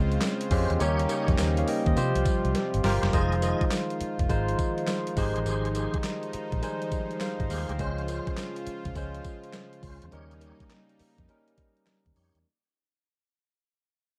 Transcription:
Already playing: C#2 C#3 G#3 C4 C#4 F4 C5
0.12 closed hi-hat
0.21 snare, clap, closed hi-hat, tambourine, cowbell
0.41 closed hi-hat
0.51 F2 G#3 C4 C#4 F4 G4 C5, kick, open hi-hat, tambourine
0.70 E2, closed hi-hat
0.79 D#2 C#3 G3 A#3 C#4 D#4 G4 C#5, closed hi-hat, tambourine, cowbell
0.99 closed hi-hat
1.09 D#4 G4 C#5, closed hi-hat, tambourine, cowbell
1.28 F2, kick, closed hi-hat
1.38 D#2 C5 D#5, snare, clap, closed hi-hat, tambourine, cowbell
1.57 C#5 F5, closed hi-hat
1.68 D#5 G5, open hi-hat, cowbell
1.86 D#2 C5 D#5, kick, closed hi-hat
1.96 C3 F3 F4 G4 C5, closed hi-hat, tambourine, cowbell
2.15 C2, closed hi-hat
2.25 kick, closed hi-hat, tambourine
2.45 C2, closed hi-hat
2.55 snare, closed hi-hat, cowbell
2.74 G#1, closed hi-hat
2.84 G1 F4 G4 A#4 C5, snare, open hi-hat
3.03 F#1, snare, closed hi-hat
3.13 F1 D#3 F3 G#3 D#4 F4 G#4 C5 D#5, kick, closed hi-hat, tambourine, cowbell
3.32 closed hi-hat
3.42 F4 G#4 D#5, closed hi-hat, tambourine, cowbell
3.61 kick, closed hi-hat
3.71 snare, clap, closed hi-hat, tambourine, cowbell
3.90 closed hi-hat
4.01 muted fingered electric bass stroke, closed hi-hat
4.19 F1, kick, closed hi-hat
4.29 G#1 G#3 D#4 F4 C5, kick, closed hi-hat, tambourine, cowbell
4.49 closed hi-hat
4.59 kick, closed hi-hat, tambourine
4.78 closed hi-hat
4.87 snare, clap, closed hi-hat, tambourine, cowbell
5.07 closed hi-hat
5.17 G#1 G#3 D#4 G4 G#4 C5, kick, open hi-hat, tambourine
5.36 A1, closed hi-hat
5.46 G#1 G4 G#4 C5, closed hi-hat, tambourine, cowbell
5.65 closed hi-hat
5.75 G4 G#4 C5, closed hi-hat, tambourine, cowbell
5.94 kick, closed hi-hat
6.04 snare, clap, closed hi-hat, tambourine, cowbell
6.23 closed hi-hat
6.33 A#5, muted fingered electric bass stroke, closed hi-hat
6.52 A#1, kick, closed hi-hat
6.62 G3 G#3 D#4 C5 G#5, closed hi-hat, tambourine, cowbell
6.82 closed hi-hat
6.92 kick, closed hi-hat, tambourine
7.11 closed hi-hat
7.20 G#4 C5 F5, snare, clap, closed hi-hat, tambourine, cowbell
7.40 G#1 C5 D#5, kick, closed hi-hat
7.49 D#2 G4 G#4 C5 F5, open hi-hat, tambourine
7.69 D2 D#5 G5, closed hi-hat
7.79 C#2 C#3 G#3 C#4 F4 C5, kick, closed hi-hat, tambourine, cowbell
7.98 closed hi-hat
8.08 C#4 F4 C5, closed hi-hat, tambourine, cowbell
8.27 kick, closed hi-hat
8.37 snare, clap, closed hi-hat, tambourine, cowbell
8.56 closed hi-hat
8.67 muted fingered electric bass stroke, closed hi-hat
8.85 C2, kick, closed hi-hat
8.95 C#2 G#3 C#4 F4 C5, kick, closed hi-hat, tambourine, cowbell
9.15 closed hi-hat
9.24 kick, closed hi-hat, tambourine
9.44 closed hi-hat
9.53 snare, clap, closed hi-hat, tambourine, cowbell
9.73 closed hi-hat
9.83 C#2 C#4 F4 C5, kick, open hi-hat, tambourine
10.02 E2, closed hi-hat
10.11 D#2 G3 A#3 C#4 D#4 G4 A#4 C#5, closed hi-hat, cowbell
10.31 closed hi-hat
10.41 D#4 G4 C#5, closed hi-hat, cowbell
10.60 kick, closed hi-hat
10.70 snare, clap, closed hi-hat, cowbell
10.89 closed hi-hat
10.99 muted fingered electric bass stroke, open hi-hat, cowbell
11.18 F2, kick, closed hi-hat
11.28 G3 C#4 D#4 A#4, closed hi-hat, cowbell
11.48 closed hi-hat
11.58 kick, closed hi-hat
11.77 closed hi-hat
11.86 snare, clap, closed hi-hat, cowbell
12.06 D#2, kick, closed hi-hat
12.16 F2 D#4 G4 C#5, open hi-hat
12.35 E2, closed hi-hat

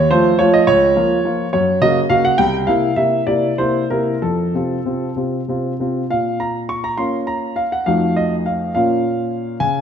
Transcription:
0.11 F3 A3 F4 C5
0.39 F3 A3 F4 C#5
0.54 D#5
0.67 C#2 C#5
0.96 F3 A#3 F4
1.25 F3 A#3 F4
1.53 F#2 C#5
1.82 C#3 A#3 F#4 D#5
2.10 C#3 A#3 F#4 F5
2.25 F#5
2.38 C2 G5
2.67 C3 A#3 E4 F5
2.96 C3 A#3 E4 E5
3.27 C3 A#3 E4 D5
3.58 C3 A#3 E4 C5
3.90 C3 A#3 E4 A#4
4.22 F2 A4
4.54 C3 C4 F4
4.85 C3 C4 F4
5.16 C3 C4 F4
5.48 C3 C4 F4
5.80 C3 C4 F4
6.10 A#2 F5
6.40 A#5
6.69 C#6
6.84 A#5
6.97 A#3 C#4 F4 C6
7.27 A#5
7.56 F5
7.72 F#5
7.86 F2 A3 D#4 F#4 F5
8.16 D#5
8.46 F5
8.75 A#2 A#3 C#4 F4 F5
9.60 C#3 G#5

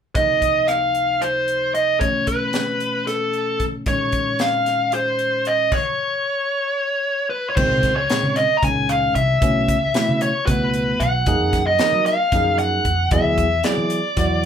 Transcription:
0.15 C#2 C3 F3 A#3 D#4 D#5, kick, closed hi-hat
0.42 kick, closed hi-hat
0.68 F5, cross-stick, closed hi-hat
0.95 closed hi-hat
1.22 C5, closed hi-hat
1.48 closed hi-hat
1.75 D#5, closed hi-hat
1.99 B2 E3 A3 C#4 C#5, kick, closed hi-hat
2.27 B4, kick, closed hi-hat
2.53 snare, closed hi-hat
2.80 closed hi-hat
3.07 A4, snare, closed hi-hat
3.33 closed hi-hat
3.60 kick, closed hi-hat
3.86 A#2 D#3 G#3 C#4 C#5, kick, closed hi-hat
4.12 kick, closed hi-hat
4.39 F5, snare, closed hi-hat
4.66 snare, closed hi-hat
4.92 C5, closed hi-hat
5.19 closed hi-hat
5.45 D#5, closed hi-hat
5.72 C#5, kick, crash
7.30 B4
7.50 C#5
7.56 C#2 A#2 D#3 G#3 C4 C5, kick, crash
7.70 C2
7.83 C#2, kick, snare, closed hi-hat
7.96 C#5
8.10 A#2 D#3 G#3 C4, snare, closed hi-hat
8.23 C#3
8.36 D#5, closed hi-hat
8.57 A#5
8.63 C#2 A#2 D#3 G#3 C#4 G#5, kick, closed hi-hat
8.89 F5, closed hi-hat
9.15 C2 E5, kick, closed hi-hat
9.41 C#2 B2 E3 A3 C#4, kick, closed hi-hat
9.56 B1
9.68 C#2, kick, closed hi-hat
9.94 B2 E3 A3 E4, snare, closed hi-hat
10.09 C#3
10.21 C#5, closed hi-hat
10.46 C#2 B2 E3 A3 B3 B4, kick, closed hi-hat
10.74 closed hi-hat
11.00 B1 F#5, kick, closed hi-hat
11.26 F#2 F3 A#3 D#4 G#4, kick, closed hi-hat
11.40 F2
11.53 F#2, kick, snare, closed hi-hat
11.67 D#5
11.79 F3 A#3 D#4 A#4, snare, closed hi-hat
11.92 F#3
12.06 F5, snare, closed hi-hat
12.32 F#2 F3 A#3 D#4 G#4, kick, snare, closed hi-hat
12.58 F#5, closed hi-hat
12.85 F2, kick, closed hi-hat
13.11 E2 F#3 B3 E4 G#4 E5, kick, closed hi-hat
13.24 D2
13.38 E2, kick, closed hi-hat
13.64 F#3 B3 E4 G#4 D5, snare, closed hi-hat
13.77 E3
13.90 closed hi-hat
14.16 E2 F#3 B3 E4 F#4, kick, snare, closed hi-hat

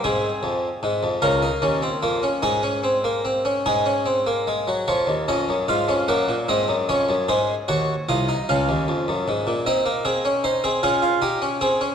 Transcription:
0.04 G#2 C4 G#4 G#5
0.43 F2
0.83 G#2
1.03 F2
1.22 C#2 C#4 A#4 F5
1.43 D#4
1.62 D#2 C#4
1.83 C4
2.02 F2 A#3
2.23 C#4
2.42 G#2 D#4 G#4 G#5
2.63 C#4
2.83 C4
3.04 A#3
3.25 C4
3.45 C#4
3.66 G#2 D#4 G#4 G#5
3.86 C#4
4.05 C4
4.26 A#3
4.47 G#3
4.68 F#3
4.88 F2 F3 C#5
5.07 D#2
5.28 F2 C#4 D#5
5.49 F#2
5.68 G#2 F4 F5
5.88 F2 C#4
6.08 F#2 A#3 F#5
6.29 A#2
6.49 G#2 C4 D#5
6.68 F#2
6.89 F2 C#4 C#5
7.09 F#2
7.29 G#2 G#4 C5
7.68 D#2 F#4 C#5
8.09 C2 F4 D#5
8.29 D#4
8.49 C#2 C#4 F5
8.69 D#2
8.88 F2
9.08 F#2
9.28 G#2
9.47 A#2
9.66 C4 D#4 D#5
9.85 A#3
10.05 C4 G#4
10.25 C#4
10.44 D#4 C5
10.64 C4 G#4
10.83 C#4 F4 G#4
11.02 F4
11.22 D#4 G4
11.42 C#4
11.61 C4 G#4
11.81 C#4

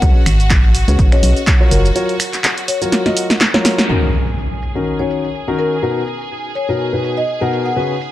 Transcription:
Already playing: F#4 F#5
0.02 C#2 C#4 F#4 G#4 B4 C#5, kick, closed hi-hat, shaker
0.26 G#1, finger snap, open hi-hat, shaker
0.40 closed hi-hat, shaker
0.50 finger snap, kick, clap, closed hi-hat, shaker
0.75 open hi-hat, shaker
0.88 C#2 C#4 F#4 G#4 B4 C#5, closed hi-hat, shaker
0.99 G#1, kick, closed hi-hat, shaker
1.12 C#4 F#4 G#4 B4 C#5 D#5, finger snap, closed hi-hat
1.23 B1, open hi-hat, shaker
1.37 closed hi-hat, shaker
1.47 kick, clap, closed hi-hat, shaker
1.61 F#3 F4 F#4 A#4 C#5
1.71 F#1 A#4, open hi-hat, shaker
1.85 shaker
1.96 F#3 F4 F#4 A#4 C#5, closed hi-hat, shaker
2.09 closed hi-hat
2.20 finger snap, open hi-hat, shaker
2.33 clap, closed hi-hat, shaker
2.44 finger snap, clap, closed hi-hat, shaker
2.58 closed hi-hat
2.68 C#5, open hi-hat, shaker
2.82 F#3 F4 F#4 A#4 C#5, closed hi-hat, shaker
2.92 snare, closed hi-hat, shaker
3.06 F#3 F4 F#4 A#4 D#5, snare, closed hi-hat
3.17 open hi-hat, shaker
3.30 snare, closed hi-hat, shaker
3.41 snare, clap, closed hi-hat, shaker
3.54 F#3 F4 F#4 A#4 C#5, snare, closed hi-hat
3.65 snare, open hi-hat, shaker
3.78 snare, closed hi-hat, shaker
3.89 D#3 C#4 D#4 F#4 G#4 A#4 G#5, impact
4.14 shaker
4.27 shaker
4.38 shaker
4.62 shaker
4.75 D#3 C#4 D#4 F#4 A#4, shaker
4.86 shaker
4.99 D#3 C#4 D#4 F#4 C#5
5.11 shaker
5.24 shaker
5.35 shaker
5.48 D#3 C#4 D#4 F#4 A#4
5.59 A#4, shaker
5.73 shaker
5.83 B2 B3 D#4 F#4 A#4, shaker
6.08 shaker
6.21 shaker
6.32 shaker
6.55 C#5, shaker
6.69 B2 B3 D#4 F#4 A#4, shaker
6.80 shaker
6.93 B2 B3 D#4 F#4 B4
7.04 shaker
7.17 D#5, shaker
7.29 shaker
7.41 B2 B3 D#4 F#4 A#4 F#5
7.53 shaker
7.66 F#5, shaker
7.76 C#3 C#4 F#4 G#4 B4, shaker
8.01 shaker

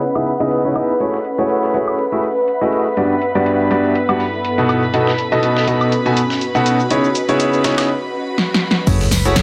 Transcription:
Already playing: C#4 B4 D#5 F#5 B5
0.02 closed hi-hat, cabasa
0.15 C#3 B3 D#4 E4 G#4 E5, cabasa, high woodblock
0.26 open hi-hat, cabasa
0.40 C#3 B3 D#4 E4 G#4 D#5, cabasa
0.51 closed hi-hat
0.64 C#3 B3 D#4 E4 G#4 C#5, cabasa
0.75 B3 D#4 E4 G#4 D#5, closed hi-hat, cabasa, high woodblock
0.89 cabasa
1.00 A3 E4 F#4 G#4 C#5, closed hi-hat, cabasa
1.14 snare
1.25 closed hi-hat, cabasa
1.38 A3 E4 F#4 G#4 C#5 E5, cabasa
1.49 closed hi-hat, cabasa
1.63 snare
1.74 A3 E4 F#4 G#4 C#5, closed hi-hat, cabasa
1.88 cabasa, high woodblock
1.99 closed hi-hat, cabasa
2.12 A3 E4 F#4 G#4 E5, cabasa
2.23 closed hi-hat, cabasa
2.37 cabasa
2.48 closed hi-hat, cabasa
2.61 A3 E4 F#4 G#4 D#5, cabasa
2.72 closed hi-hat, cabasa
2.86 cabasa
2.97 G2 B3 D4 F#4 G4 D5, closed hi-hat, cabasa
3.21 E4, closed hi-hat, cabasa
3.25 B3 A4
3.35 G2 B3 D4 F#4 G4 D5, closed hi-hat, cabasa
3.46 closed hi-hat, cabasa
3.60 cabasa
3.71 G2 B3 D4 F#4 G4 D5, closed hi-hat, cabasa
3.84 cabasa
3.95 closed hi-hat, cabasa
4.09 G2 B3 D4 F#4 G4 F#5, cabasa, high woodblock
4.20 open hi-hat, cabasa
4.34 cabasa
4.45 closed hi-hat, cabasa
4.58 B2 B3 D#4 F#4 A4 F#5, cabasa
4.69 C#4, closed hi-hat, cabasa, high woodblock
4.83 cabasa
4.94 B2 B3 D#4 F#4 A4 D#5, closed hi-hat, cabasa
4.98 F#4
5.07 snare
5.18 closed hi-hat, cabasa
5.23 B4
5.32 B2 B3 D#4 F#4 A4 D#5, cabasa
5.43 closed hi-hat, cabasa
5.57 snare
5.67 B2 B3 D#4 F#4 A4 D#5, closed hi-hat, cabasa
5.81 cabasa, high woodblock
5.92 closed hi-hat, cabasa
6.06 B2 B3 D#4 F#4 A4 G#5, cabasa
6.17 closed hi-hat, cabasa
6.30 snare, cabasa
6.41 closed hi-hat, cabasa
6.55 B2 B3 D#4 F#4 A4 F#5, cabasa
6.66 closed hi-hat, cabasa
6.80 cabasa
6.90 C#3 B3 D#4 E4 G#4 C#5, closed hi-hat, cabasa
7.04 cabasa
7.15 closed hi-hat, cabasa
7.29 C#3 B3 D#4 E4 G#4 C#5, closed hi-hat, cabasa
7.40 closed hi-hat, cabasa
7.53 cabasa
7.64 C#3 B3 D#4 E4 G#4 C#5, snare, closed hi-hat, cabasa
7.78 snare, closed hi-hat, cabasa, high woodblock
7.89 swell
8.38 snare
8.54 snare
8.71 snare
8.87 F#1 A3 E4 F#4 G#4 B4 C#5 B5, kick, closed hi-hat, crash, tambourine, sub drop, cabasa
9.01 snare, closed hi-hat, tambourine
9.11 snare, closed hi-hat, open hi-hat, tambourine, cabasa
9.25 A3 E4 F#4 G#4 C#5, closed hi-hat, tambourine, cabasa
9.36 kick, snare, closed hi-hat, tambourine, cabasa

